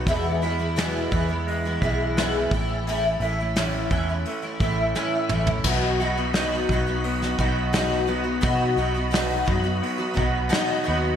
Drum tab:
CC |----------------|----------------|x---------------|----------------|
HH |o-o-o-o-o-o-o-o-|o-o-o-o-o-o-----|----o---o---o---|o---o---o---o---|
SD |----o-------o---|----o-------o---|----o----o--o---|----o-------o---|
T2 |----------------|--------------o-|----------------|----------------|
FT |----------------|---------------o|----------------|----------------|
BD |o-----o---o---o-|------o---o-----|o-----o---o-----|o-----o---o-----|